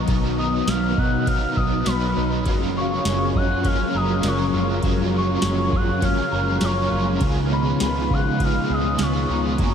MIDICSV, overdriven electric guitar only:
0, 0, Header, 1, 2, 480
1, 0, Start_track
1, 0, Key_signature, 6, "major"
1, 0, Tempo, 594059
1, 66, Time_signature, 4, 2, 24, 8
1, 7873, End_track
2, 0, Start_track
2, 0, Title_t, "Overdriven electric guitar"
2, 0, Program_c, 0, 29
2, 55, Note_on_c, 0, 47, 85
2, 63, Note_on_c, 0, 51, 88
2, 69, Note_on_c, 0, 54, 89
2, 74, Note_on_c, 0, 59, 104
2, 80, Note_on_c, 0, 63, 94
2, 81, Note_on_c, 0, 70, 102
2, 284, Note_off_c, 0, 70, 0
2, 294, Note_on_c, 0, 70, 59
2, 299, Note_off_c, 0, 63, 0
2, 301, Note_off_c, 0, 47, 0
2, 305, Note_off_c, 0, 51, 0
2, 308, Note_off_c, 0, 54, 0
2, 309, Note_on_c, 0, 63, 52
2, 310, Note_off_c, 0, 59, 0
2, 321, Note_on_c, 0, 59, 48
2, 332, Note_on_c, 0, 54, 45
2, 1016, Note_off_c, 0, 54, 0
2, 1019, Note_on_c, 0, 54, 65
2, 1022, Note_off_c, 0, 59, 0
2, 1028, Note_off_c, 0, 63, 0
2, 1031, Note_on_c, 0, 59, 75
2, 1043, Note_on_c, 0, 63, 73
2, 1053, Note_off_c, 0, 70, 0
2, 1057, Note_on_c, 0, 70, 78
2, 1485, Note_off_c, 0, 54, 0
2, 1488, Note_on_c, 0, 54, 47
2, 1495, Note_off_c, 0, 59, 0
2, 1505, Note_on_c, 0, 59, 63
2, 1506, Note_off_c, 0, 63, 0
2, 1516, Note_on_c, 0, 63, 60
2, 1529, Note_off_c, 0, 70, 0
2, 1959, Note_off_c, 0, 54, 0
2, 1963, Note_on_c, 0, 54, 81
2, 1979, Note_off_c, 0, 59, 0
2, 1983, Note_on_c, 0, 61, 96
2, 1991, Note_off_c, 0, 63, 0
2, 2004, Note_on_c, 0, 65, 91
2, 2023, Note_on_c, 0, 70, 97
2, 2927, Note_off_c, 0, 54, 0
2, 2936, Note_on_c, 0, 54, 62
2, 2947, Note_off_c, 0, 61, 0
2, 2950, Note_on_c, 0, 61, 72
2, 2956, Note_off_c, 0, 65, 0
2, 2960, Note_on_c, 0, 65, 76
2, 2962, Note_off_c, 0, 70, 0
2, 2972, Note_on_c, 0, 70, 74
2, 3399, Note_off_c, 0, 54, 0
2, 3409, Note_on_c, 0, 54, 59
2, 3422, Note_off_c, 0, 61, 0
2, 3425, Note_on_c, 0, 61, 61
2, 3433, Note_off_c, 0, 65, 0
2, 3438, Note_on_c, 0, 65, 63
2, 3439, Note_off_c, 0, 70, 0
2, 3449, Note_on_c, 0, 70, 60
2, 3878, Note_off_c, 0, 54, 0
2, 3888, Note_on_c, 0, 54, 89
2, 3908, Note_off_c, 0, 61, 0
2, 3911, Note_on_c, 0, 61, 98
2, 3912, Note_off_c, 0, 65, 0
2, 3918, Note_off_c, 0, 70, 0
2, 3930, Note_on_c, 0, 65, 99
2, 3948, Note_on_c, 0, 70, 84
2, 4844, Note_off_c, 0, 54, 0
2, 4854, Note_on_c, 0, 54, 71
2, 4865, Note_off_c, 0, 61, 0
2, 4868, Note_on_c, 0, 61, 70
2, 4877, Note_off_c, 0, 65, 0
2, 4880, Note_on_c, 0, 65, 70
2, 4881, Note_off_c, 0, 70, 0
2, 4890, Note_on_c, 0, 70, 78
2, 5326, Note_off_c, 0, 54, 0
2, 5335, Note_on_c, 0, 54, 58
2, 5347, Note_off_c, 0, 61, 0
2, 5350, Note_on_c, 0, 61, 62
2, 5358, Note_off_c, 0, 65, 0
2, 5358, Note_off_c, 0, 70, 0
2, 5361, Note_on_c, 0, 65, 59
2, 5373, Note_on_c, 0, 70, 68
2, 5808, Note_on_c, 0, 49, 90
2, 5821, Note_off_c, 0, 54, 0
2, 5829, Note_on_c, 0, 56, 106
2, 5840, Note_off_c, 0, 61, 0
2, 5840, Note_off_c, 0, 70, 0
2, 5843, Note_on_c, 0, 59, 85
2, 5853, Note_off_c, 0, 65, 0
2, 5856, Note_on_c, 0, 65, 109
2, 5868, Note_on_c, 0, 68, 103
2, 6775, Note_off_c, 0, 56, 0
2, 6777, Note_off_c, 0, 49, 0
2, 6779, Note_on_c, 0, 56, 64
2, 6783, Note_off_c, 0, 59, 0
2, 6793, Note_on_c, 0, 59, 75
2, 6795, Note_off_c, 0, 65, 0
2, 6805, Note_on_c, 0, 65, 70
2, 6813, Note_off_c, 0, 68, 0
2, 6816, Note_on_c, 0, 68, 74
2, 7253, Note_off_c, 0, 56, 0
2, 7256, Note_on_c, 0, 56, 57
2, 7265, Note_off_c, 0, 59, 0
2, 7275, Note_off_c, 0, 65, 0
2, 7275, Note_on_c, 0, 59, 60
2, 7287, Note_on_c, 0, 65, 66
2, 7292, Note_off_c, 0, 68, 0
2, 7295, Note_on_c, 0, 68, 68
2, 7744, Note_on_c, 0, 54, 93
2, 7746, Note_off_c, 0, 56, 0
2, 7749, Note_on_c, 0, 58, 96
2, 7750, Note_off_c, 0, 59, 0
2, 7756, Note_off_c, 0, 65, 0
2, 7756, Note_on_c, 0, 61, 91
2, 7762, Note_on_c, 0, 66, 108
2, 7766, Note_off_c, 0, 68, 0
2, 7769, Note_on_c, 0, 68, 96
2, 7873, Note_off_c, 0, 54, 0
2, 7873, Note_off_c, 0, 58, 0
2, 7873, Note_off_c, 0, 61, 0
2, 7873, Note_off_c, 0, 66, 0
2, 7873, Note_off_c, 0, 68, 0
2, 7873, End_track
0, 0, End_of_file